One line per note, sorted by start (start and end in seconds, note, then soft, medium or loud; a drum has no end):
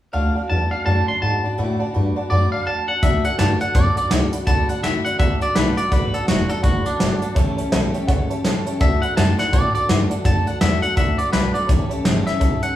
0.13 0.35 D2 medium
0.13 0.35 D3 medium
0.13 0.35 A3 medium
0.13 0.35 D4 medium
0.13 0.36 F#4 medium
0.13 0.26 D5 medium
0.13 0.34 D5 medium
0.13 0.49 F5 medium
0.13 0.26 F#5 medium
0.13 0.26 A5 loud
0.35 0.50 D4 soft
0.35 0.50 F#4 soft
0.35 0.44 D5 medium
0.35 0.50 D5 medium
0.35 0.44 F#5 medium
0.35 0.44 A5 medium
0.35 muted upright bass stroke medium
0.49 0.71 E2 medium
0.49 0.72 A3 medium
0.49 0.72 D4 medium
0.49 0.71 F#4 medium
0.49 0.63 D5 medium
0.49 0.71 D5 medium
0.49 0.63 F#5 medium
0.49 0.71 A5 medium
0.71 0.86 D4 soft
0.71 0.87 F#4 soft
0.71 0.80 D5 medium
0.71 0.86 D5 soft
0.71 0.85 F5 medium
0.71 0.80 F#5 medium
0.71 0.80 A5 medium
0.71 muted upright bass stroke medium
0.85 1.07 F#2 medium
0.85 1.08 D3 medium
0.85 1.08 A3 medium
0.85 1.08 D4 medium
0.85 1.08 F#4 medium
0.85 0.99 D5 medium
0.85 1.07 D5 medium
0.85 0.99 F#5 medium
0.85 0.99 A5 loud
0.85 1.07 A5 medium
1.08 1.22 D4 soft
1.08 1.22 F#4 soft
1.08 1.16 D5 medium
1.08 1.22 D5 soft
1.08 1.16 F#5 medium
1.08 1.16 A5 medium
1.08 1.22 C6 medium
1.08 muted upright bass stroke medium
1.22 1.43 G#2 medium
1.22 1.44 A3 medium
1.22 1.44 D4 medium
1.22 1.44 F#4 medium
1.22 1.35 D5 medium
1.22 1.43 D5 medium
1.22 1.35 F#5 medium
1.22 1.57 A5 loud
1.22 1.35 B5 medium
1.43 1.57 D4 soft
1.43 1.57 F#4 medium
1.43 1.52 D5 medium
1.43 1.58 D5 medium
1.43 1.52 F#5 medium
1.43 1.53 A5 medium
1.43 muted upright bass stroke medium
1.58 1.80 A2 medium
1.58 1.80 D3 medium
1.58 1.80 A3 medium
1.58 1.80 D4 medium
1.58 1.80 F#4 medium
1.58 1.72 D5 medium
1.58 1.79 D5 medium
1.58 1.72 F#5 medium
1.58 1.72 B5 loud
1.79 1.93 D4 medium
1.79 1.94 F#4 medium
1.79 1.88 D5 medium
1.79 1.95 D5 medium
1.79 1.88 F#5 medium
1.79 1.89 A5 loud
1.79 muted upright bass stroke medium
1.94 2.16 G2 medium
1.94 2.16 A3 medium
1.94 2.16 D4 medium
1.94 2.16 F#4 medium
1.94 2.07 D5 medium
1.94 2.15 D5 medium
1.94 2.07 F#5 medium
1.94 2.07 B5 medium
2.16 2.29 D4 soft
2.16 2.30 F#4 medium
2.16 2.25 D5 loud
2.16 2.30 D5 medium
2.16 2.25 F#5 medium
2.16 2.25 A5 loud
2.16 muted upright bass stroke medium
2.30 2.52 F#2 medium
2.30 2.52 D3 medium
2.30 2.52 A3 medium
2.30 2.53 D4 medium
2.30 2.52 F#4 medium
2.30 2.52 D5 medium
2.30 2.44 D5 medium
2.30 2.51 D5 medium
2.30 2.44 F#5 medium
2.30 2.44 B5 loud
2.52 2.66 D4 soft
2.52 2.67 F#4 soft
2.52 2.61 D5 medium
2.52 2.67 D5 medium
2.52 2.66 F5 medium
2.52 2.61 A5 medium
2.52 muted upright bass stroke medium
2.66 2.87 E2 medium
2.66 2.88 A3 medium
2.66 2.89 D4 soft
2.66 2.89 F#4 medium
2.66 2.80 D5 medium
2.66 2.87 D5 medium
2.66 2.80 F#5 medium
2.66 2.80 A5 medium
2.66 2.88 A5 medium
2.88 3.03 D4 soft
2.88 3.03 F#4 soft
2.88 2.97 D5 medium
2.88 3.03 D5 medium
2.88 3.02 F#5 medium
2.88 2.97 F#5 medium
2.88 2.98 A5 medium
2.88 muted upright bass stroke soft
3.03 3.24 D2 medium
3.03 3.25 D3 medium
3.03 3.25 A3 medium
3.03 3.25 D4 medium
3.03 3.25 F#4 medium
3.03 3.24 A4 medium
3.03 3.16 D5 medium
3.03 3.24 E5 medium
3.03 3.16 F#5 medium
3.03 3.16 A5 medium
3.03 kick loud
3.03 closed hi-hat medium
3.24 3.38 D4 soft
3.24 3.39 F#4 medium
3.24 3.39 A4 medium
3.24 3.33 D5 medium
3.24 3.33 F#5 medium
3.24 3.38 F#5 medium
3.24 3.33 A5 medium
3.24 muted upright bass stroke medium
3.24 closed hi-hat medium
3.38 3.60 G2 medium
3.38 3.61 D3 medium
3.38 3.61 A3 medium
3.38 3.61 D4 medium
3.38 3.60 F#4 medium
3.38 3.59 A4 medium
3.38 3.52 D5 medium
3.38 3.52 F#5 medium
3.38 3.60 A5 medium
3.38 snare loud
3.38 closed hi-hat medium
3.61 3.73 D4 medium
3.61 3.74 F#4 soft
3.61 3.75 A4 soft
3.61 3.69 D5 medium
3.61 3.69 F#5 medium
3.61 3.75 F#5 medium
3.61 3.70 A5 medium
3.61 muted upright bass stroke medium
3.61 closed hi-hat medium
3.74 3.96 F#2 medium
3.74 3.96 A3 medium
3.74 3.97 D4 medium
3.74 3.96 F#4 medium
3.74 3.95 A4 medium
3.74 3.88 D5 medium
3.74 3.96 D5 medium
3.74 3.88 F#5 medium
3.74 3.88 A5 medium
3.74 kick loud
3.74 closed hi-hat medium
3.96 4.11 D4 soft
3.96 4.11 F#4 soft
3.96 4.11 A4 soft
3.96 4.05 D5 medium
3.96 4.11 D5 medium
3.96 4.05 F#5 medium
3.96 4.05 A5 medium
3.96 muted upright bass stroke medium
3.96 closed hi-hat medium
4.11 4.32 C#2 medium
4.11 4.33 D3 medium
4.11 4.33 A3 medium
4.11 4.33 D4 medium
4.11 4.32 F#4 medium
4.11 4.31 A4 medium
4.11 4.24 D5 medium
4.11 4.24 F#5 medium
4.11 4.24 A5 medium
4.11 snare loud
4.11 closed hi-hat medium
4.32 4.46 D4 medium
4.32 4.46 F#4 medium
4.32 4.46 A4 medium
4.32 4.42 D5 medium
4.32 4.42 F#5 medium
4.32 4.42 B5 medium
4.32 muted upright bass stroke medium
4.32 closed hi-hat medium
4.46 4.68 D2 medium
4.46 4.69 D3 medium
4.46 4.69 A3 medium
4.46 4.69 D4 medium
4.46 4.69 F#4 medium
4.46 4.68 A4 medium
4.46 4.60 D5 medium
4.46 4.60 F#5 medium
4.46 4.69 A5 loud
4.46 4.60 B5 loud
4.46 kick loud
4.46 closed hi-hat medium
4.69 4.82 D4 soft
4.69 4.83 F#4 soft
4.69 4.83 A4 medium
4.69 4.78 D5 medium
4.69 4.83 F#5 medium
4.69 4.78 F#5 medium
4.69 4.78 A5 medium
4.69 muted upright bass stroke medium
4.69 closed hi-hat medium
4.82 5.04 F#2 medium
4.82 5.05 D3 medium
4.82 5.05 A3 medium
4.82 5.05 D4 medium
4.82 5.04 F#4 medium
4.82 5.03 A4 medium
4.82 4.96 D5 medium
4.82 5.04 E5 medium
4.82 4.96 F#5 medium
4.82 4.96 B5 medium
4.82 snare loud
4.82 closed hi-hat medium
5.04 5.18 D4 soft
5.04 5.19 F#4 medium
5.04 5.19 A4 medium
5.04 5.14 D5 medium
5.04 5.19 F#5 medium
5.04 5.14 F#5 medium
5.04 5.14 B5 medium
5.04 muted upright bass stroke soft
5.04 closed hi-hat medium
5.18 5.41 D2 medium
5.18 5.41 A3 medium
5.18 5.41 D4 medium
5.18 5.40 F#4 medium
5.18 5.39 A4 medium
5.18 5.32 D5 loud
5.18 5.41 E5 medium
5.18 5.32 F#5 medium
5.18 5.32 A5 loud
5.18 kick loud
5.18 closed hi-hat medium
5.40 5.54 D4 soft
5.40 5.55 F#4 soft
5.40 5.54 A4 medium
5.40 5.49 D5 medium
5.40 5.56 D5 medium
5.40 5.50 F#5 medium
5.40 5.50 A5 medium
5.40 muted upright bass stroke medium
5.40 closed hi-hat medium
5.54 5.77 B1 medium
5.54 5.77 D3 medium
5.54 5.77 A3 medium
5.54 5.77 D4 medium
5.54 5.77 F#4 medium
5.54 5.75 A4 medium
5.54 5.77 B4 medium
5.54 5.68 D5 medium
5.54 5.68 F#5 medium
5.54 5.68 A5 medium
5.54 snare loud
5.54 closed hi-hat medium
5.76 5.91 D4 soft
5.76 5.91 F#4 medium
5.76 5.92 A4 medium
5.76 5.86 D5 medium
5.76 5.93 D5 medium
5.76 5.86 F#5 medium
5.76 5.86 B5 medium
5.76 muted upright bass stroke medium
5.76 closed hi-hat medium
5.91 6.13 A1 medium
5.91 6.13 D3 medium
5.91 6.14 A3 medium
5.91 6.14 D4 medium
5.91 6.13 F#4 medium
5.91 6.12 A4 medium
5.91 6.13 B4 medium
5.91 6.05 D5 loud
5.91 6.05 F#5 medium
5.91 6.05 B5 loud
5.91 kick loud
5.91 closed hi-hat medium
6.13 6.27 D4 soft
6.13 6.28 F#4 soft
6.13 6.28 A4 medium
6.13 6.22 D5 medium
6.13 6.22 F#5 medium
6.13 6.22 B5 medium
6.13 muted upright bass stroke medium
6.13 closed hi-hat medium
6.26 6.49 E1 medium
6.26 6.50 D3 medium
6.26 6.50 A3 medium
6.26 6.50 D4 medium
6.26 6.50 F#4 medium
6.26 6.49 F#4 medium
6.26 6.48 A4 medium
6.26 6.40 D5 medium
6.26 6.40 F#5 medium
6.26 6.40 A5 medium
6.26 snare loud
6.26 closed hi-hat medium
6.48 6.63 D4 medium
6.48 6.64 F#4 medium
6.48 6.64 A4 medium
6.48 6.63 A4 medium
6.48 6.58 D5 medium
6.48 6.58 F#5 medium
6.48 6.58 A5 medium
6.48 muted upright bass stroke medium
6.48 closed hi-hat medium
6.62 6.85 F#1 medium
6.62 6.86 A3 medium
6.62 6.86 D4 medium
6.62 6.85 F#4 medium
6.62 6.86 F#4 medium
6.62 6.85 A4 medium
6.62 6.76 D5 medium
6.62 6.76 F#5 medium
6.62 6.76 B5 loud
6.62 kick loud
6.62 closed hi-hat loud
6.84 7.35 D4 medium
6.84 7.00 D4 soft
6.84 7.00 F#4 soft
6.84 7.00 A4 soft
6.84 6.94 D5 medium
6.84 6.94 F#5 medium
6.84 6.94 A5 medium
6.84 muted upright bass stroke medium
6.84 closed hi-hat medium
6.99 7.22 G1 medium
6.99 7.22 D3 medium
6.99 7.22 A3 medium
6.99 7.22 D4 medium
6.99 7.22 F#4 medium
6.99 7.21 A4 medium
6.99 7.13 D5 medium
6.99 7.13 F#5 medium
6.99 7.13 A5 medium
6.99 snare loud
6.99 closed hi-hat medium
7.21 7.36 D4 soft
7.21 7.37 F#4 medium
7.21 7.36 A4 medium
7.21 7.30 D5 medium
7.21 7.30 F#5 medium
7.21 7.30 A5 medium
7.21 muted upright bass stroke medium
7.21 closed hi-hat medium
7.35 7.57 A1 medium
7.35 7.58 A2 medium
7.35 7.58 E3 medium
7.35 7.58 G3 loud
7.35 7.58 C#4 loud
7.35 7.58 G4 medium
7.35 7.57 A4 loud
7.35 7.49 C#5 loud
7.35 7.49 E5 loud
7.35 7.49 A5 loud
7.35 kick loud
7.35 closed hi-hat medium
7.57 7.72 G3 soft
7.57 7.72 C#4 medium
7.57 7.72 G4 medium
7.57 7.73 A4 medium
7.57 7.66 C#5 loud
7.57 7.66 E5 medium
7.57 7.66 A5 medium
7.57 muted upright bass stroke soft
7.57 closed hi-hat medium
7.72 7.94 B1 loud
7.72 7.94 A2 medium
7.72 7.94 E3 medium
7.72 7.95 G3 medium
7.72 7.95 C#4 loud
7.72 7.94 G4 medium
7.72 7.94 A4 loud
7.72 7.86 C#5 medium
7.72 7.86 E5 medium
7.72 7.86 A5 medium
7.72 snare loud
7.72 closed hi-hat medium
7.93 8.08 G3 medium
7.93 8.09 C#4 medium
7.93 8.09 G4 medium
7.93 8.09 A4 medium
7.93 8.02 C#5 loud
7.93 8.02 E5 medium
7.93 8.03 G5 loud
7.93 muted upright bass stroke medium
7.93 closed hi-hat medium
8.07 8.30 C#2 medium
8.07 8.31 G3 medium
8.07 8.31 C#4 medium
8.07 8.30 G4 medium
8.07 8.30 A4 medium
8.07 8.21 C#5 loud
8.07 8.21 E5 loud
8.07 8.21 F#5 loud
8.07 kick loud
8.07 closed hi-hat medium
8.30 8.44 G3 soft
8.30 8.45 C#4 medium
8.30 8.45 G4 medium
8.30 8.45 A4 medium
8.30 8.39 C#5 medium
8.30 8.39 E5 medium
8.30 8.39 A5 loud
8.30 muted upright bass stroke medium
8.30 closed hi-hat medium
8.45 8.65 E2 medium
8.45 8.67 A2 medium
8.45 8.67 E3 medium
8.45 8.67 G3 medium
8.45 8.67 C#4 medium
8.45 8.67 G4 medium
8.45 8.66 A4 medium
8.45 8.58 C#5 medium
8.45 8.58 E5 medium
8.45 8.58 A5 loud
8.45 snare loud
8.45 closed hi-hat medium
8.66 8.81 G3 medium
8.66 8.82 C#4 medium
8.66 8.82 G4 medium
8.66 8.81 A4 medium
8.66 8.75 C#5 medium
8.66 8.75 E5 medium
8.66 8.75 A5 medium
8.66 muted upright bass stroke soft
8.66 closed hi-hat medium
8.80 9.02 D2 medium
8.80 9.03 D3 medium
8.80 9.03 A3 medium
8.80 9.03 D4 medium
8.80 9.02 F#4 medium
8.80 9.01 A4 medium
8.80 8.93 D5 medium
8.80 9.02 E5 medium
8.80 8.93 F#5 medium
8.80 8.93 A5 loud
8.80 kick loud
8.80 closed hi-hat medium
9.02 9.16 D4 soft
9.02 9.17 F#4 medium
9.02 9.17 A4 medium
9.02 9.11 D5 medium
9.02 9.16 F#5 medium
9.02 9.11 F#5 medium
9.02 9.11 B5 medium
9.02 muted upright bass stroke medium
9.02 closed hi-hat medium
9.16 9.38 F#2 loud
9.16 9.39 D3 medium
9.16 9.39 A3 medium
9.16 9.38 D4 medium
9.16 9.38 F#4 medium
9.16 9.37 A4 medium
9.16 9.30 D5 medium
9.16 9.29 F#5 medium
9.16 9.30 A5 medium
9.16 9.38 A5 medium
9.16 snare loud
9.16 closed hi-hat medium
9.38 9.52 F#4 medium
9.38 9.53 A4 medium
9.38 9.47 D5 medium
9.38 9.47 F#5 medium
9.38 9.53 F#5 loud
9.38 9.47 B5 medium
9.38 muted upright bass stroke medium
9.38 snare soft
9.38 closed hi-hat medium
9.52 9.74 A2 medium
9.52 9.74 A3 medium
9.52 9.74 D4 medium
9.52 9.74 F#4 medium
9.52 9.72 A4 medium
9.52 9.65 D5 medium
9.52 9.74 D5 medium
9.52 9.66 F#5 medium
9.52 9.66 A5 loud
9.52 kick loud
9.52 closed hi-hat medium
9.74 9.88 D4 soft
9.74 9.89 F#4 medium
9.74 9.88 A4 soft
9.74 9.89 D5 medium
9.74 9.83 D5 medium
9.74 9.83 F#5 medium
9.74 9.83 A5 medium
9.74 muted upright bass stroke medium
9.74 closed hi-hat medium
9.88 10.10 G2 medium
9.88 10.11 D3 medium
9.88 10.11 A3 medium
9.88 10.11 D4 medium
9.88 10.10 F#4 medium
9.88 10.09 A4 medium
9.88 10.02 D5 medium
9.88 10.02 F#5 medium
9.88 10.02 A5 medium
9.88 snare loud
9.88 closed hi-hat medium
10.10 10.24 D4 medium
10.10 10.24 F#4 medium
10.10 10.24 A4 medium
10.10 10.19 D5 medium
10.10 10.19 F#5 medium
10.10 10.19 A5 medium
10.10 muted upright bass stroke medium
10.10 closed hi-hat medium
10.24 10.46 F#2 medium
10.24 10.46 D3 medium
10.24 10.46 A3 medium
10.24 10.47 D4 medium
10.24 10.46 F#4 medium
10.24 10.45 A4 medium
10.24 10.38 D5 medium
10.24 10.38 F#5 medium
10.24 10.38 A5 loud
10.24 10.47 A5 medium
10.24 kick loud
10.24 closed hi-hat medium
10.46 10.61 D4 soft
10.46 10.61 F#4 soft
10.46 10.61 A4 medium
10.46 10.55 D5 medium
10.46 10.55 F#5 medium
10.46 10.61 F#5 medium
10.46 10.55 A5 medium
10.46 muted upright bass stroke medium
10.46 closed hi-hat medium
10.60 10.82 E2 medium
10.60 10.83 D3 medium
10.60 10.83 A3 medium
10.60 10.83 D4 medium
10.60 10.82 F#4 medium
10.60 10.82 A4 medium
10.60 10.74 D5 medium
10.60 10.82 E5 medium
10.60 10.74 F#5 medium
10.60 10.74 A5 medium
10.60 snare loud
10.60 closed hi-hat medium
10.81 10.97 D4 soft
10.81 10.98 F#4 medium
10.81 10.97 A4 medium
10.81 10.91 D5 medium
10.81 10.91 F#5 medium
10.81 10.96 F#5 medium
10.81 10.91 A5 medium
10.81 muted upright bass stroke medium
10.81 closed hi-hat medium
10.96 11.18 D2 medium
10.96 11.19 A3 medium
10.96 11.20 D4 medium
10.96 11.19 F#4 medium
10.96 11.18 A4 medium
10.96 11.10 D5 medium
10.96 11.18 E5 medium
10.96 11.10 F#5 medium
10.96 11.10 A5 loud
10.96 kick loud
10.96 closed hi-hat medium
11.17 11.33 D4 soft
11.17 11.33 F#4 medium
11.17 11.33 A4 medium
11.17 11.27 D5 medium
11.17 11.32 D5 medium
11.17 11.27 F#5 medium
11.17 11.27 B5 medium
11.17 muted upright bass stroke medium
11.17 closed hi-hat medium
11.32 11.54 B1 medium
11.32 11.55 D3 medium
11.32 11.55 A3 medium
11.32 11.56 D4 medium
11.32 11.55 F#4 medium
11.32 11.55 A4 medium
11.32 11.54 B4 loud
11.32 11.46 D5 medium
11.32 11.46 F#5 medium
11.32 11.46 A5 medium
11.32 snare loud
11.32 closed hi-hat medium
11.54 11.70 F#4 medium
11.54 11.70 A4 medium
11.54 11.63 D5 medium
11.54 11.68 D5 medium
11.54 11.63 F#5 medium
11.54 11.63 A5 medium
11.54 muted upright bass stroke medium
11.54 closed hi-hat medium
11.58 11.70 D4 medium
11.67 11.90 A1 medium
11.67 11.91 A2 medium
11.67 11.91 E3 medium
11.67 11.91 G3 medium
11.67 11.91 C#4 medium
11.67 11.90 G4 medium
11.67 11.81 C#5 medium
11.67 11.82 E5 medium
11.67 11.82 A5 loud
11.67 kick loud
11.67 closed hi-hat medium
11.71 11.90 A4 medium
11.89 12.05 G3 medium
11.89 12.05 C#4 medium
11.89 12.06 G4 medium
11.89 12.05 A4 medium
11.89 11.99 C#5 medium
11.89 11.99 E5 medium
11.89 11.99 A5 loud
11.89 muted upright bass stroke medium
11.89 closed hi-hat medium
12.04 12.26 G1 medium
12.04 12.27 A2 medium
12.04 12.27 E3 medium
12.04 12.27 G3 loud
12.04 12.27 C#4 medium
12.04 12.27 G4 medium
12.04 12.26 A4 loud
12.04 12.18 C#5 medium
12.04 12.18 E5 medium
12.04 12.18 A5 medium
12.04 snare loud
12.04 closed hi-hat medium
12.26 12.40 G3 soft
12.26 12.41 C#4 soft
12.26 12.42 G4 medium
12.26 12.41 A4 medium
12.26 12.35 C#5 medium
12.26 12.35 E5 medium
12.26 12.62 E5 medium
12.26 12.35 B5 medium
12.26 muted upright bass stroke medium
12.26 snare soft
12.26 closed hi-hat medium
12.40 12.62 B1 medium
12.40 12.63 G3 medium
12.40 12.63 C#4 medium
12.40 12.63 G4 medium
12.40 12.62 A4 medium
12.40 12.54 C#5 medium
12.40 12.54 E5 medium
12.40 12.54 A5 loud
12.40 kick loud
12.40 closed hi-hat medium
12.63 12.76 G3 soft
12.63 12.76 C#4 soft
12.63 12.76 G4 soft
12.63 12.76 A4 medium
12.63 12.72 C#5 medium
12.63 12.72 E5 medium
12.63 12.76 F#5 medium
12.63 12.72 A5 medium
12.63 muted upright bass stroke medium
12.63 closed hi-hat medium